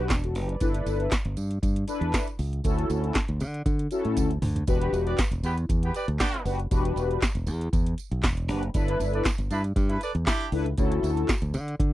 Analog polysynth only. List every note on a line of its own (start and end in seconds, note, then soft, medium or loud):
0.00 0.23 D4 medium
0.00 0.10 B4 loud
0.24 0.35 F#4 medium
0.24 0.35 A4 medium
0.36 0.49 G4 medium
0.36 0.48 B4 medium
0.49 0.60 B4 medium
0.49 0.73 D5 medium
0.61 1.12 D4 medium
0.61 1.12 E4 medium
0.61 1.13 A4 medium
0.61 1.13 B4 medium
1.88 2.27 D4 medium
1.88 2.27 E4 medium
1.88 2.27 A4 medium
1.88 2.27 B4 loud
2.63 3.15 C#4 medium
2.63 3.16 E4 medium
2.63 3.16 F#4 medium
2.63 3.16 A4 loud
3.91 4.31 C#4 medium
3.91 4.31 E4 medium
3.91 4.31 F#4 medium
3.91 4.31 A4 medium
4.67 5.19 D4 medium
4.67 5.19 F#4 medium
4.67 5.19 G4 medium
4.67 5.19 B4 medium
6.45 6.59 D4 medium
6.45 6.59 F#4 medium
6.45 6.59 G4 medium
6.45 6.59 B4 loud
6.71 7.22 D4 medium
6.71 7.22 F#4 medium
6.71 7.22 G4 medium
6.71 7.23 B4 loud
8.48 8.62 D4 medium
8.48 8.62 F#4 medium
8.48 8.63 G4 medium
8.48 8.63 B4 medium
8.74 9.25 D4 medium
8.74 9.26 E4 medium
8.74 9.26 A4 medium
8.74 9.26 B4 loud
10.52 10.66 D4 medium
10.52 10.66 E4 medium
10.52 10.66 A4 medium
10.52 10.66 B4 medium
10.78 11.29 C#4 medium
10.78 11.29 E4 medium
10.78 11.30 F#4 medium
10.78 11.30 A4 loud